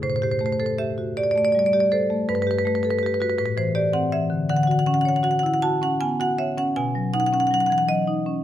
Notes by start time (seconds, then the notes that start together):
0.02 A2 C5
0.10 C5
0.16 C5
0.22 G4 C5
0.31 C5
0.39 A3 C5
0.46 C5
0.52 C5
0.60 A4 C5
0.66 C5
0.78 G4 E5
0.98 F#4
1.17 G4 D5
1.23 D5
1.31 D5
1.36 A3 D5
1.45 D5
1.52 G3 D5
1.59 D5
1.66 D5
1.73 G4 D5
1.80 D5
1.92 A4 C5
2.10 A3
2.29 G2 B4
2.35 B4
2.42 B4
2.47 G4 B4
2.59 B4
2.65 A3 B4
2.75 B4
2.83 A4 B4
2.91 B4
2.99 B4
3.03 G4 B4
3.14 B4
3.20 F#4 B4
3.30 B4
3.38 A2 B4
3.46 B4
3.57 E3 C5
3.75 G4 D5
3.93 C4 F#5
4.12 E3 E5
4.30 D3
4.49 D3 F#5
4.57 F#5
4.63 F#4 F#5
4.71 F#5
4.79 F#5
4.86 C#4 F#5
4.94 F#5
5.01 F#5
5.05 C#5 F#5
5.16 F#5
5.23 F#4 F#5
5.31 F#5
5.39 F#5
5.43 E4 F#5
5.54 F#5
5.62 F#4 A5
5.82 C#4 F#5
6.00 B3 G#5
6.20 F#4 F#5
6.38 C#5 E5
6.57 C#4 F#5
6.76 B2 G#5
6.95 F#3
7.14 D#4 F#5
7.20 F#5
7.26 F#5
7.33 C#4 F#5
7.40 F#5
7.47 F#5
7.51 F#3 F#5
7.60 F#5
7.66 E3 F#5
7.72 F#5
7.78 F#5
7.88 F#3 D#5
8.08 D#4
8.26 C#4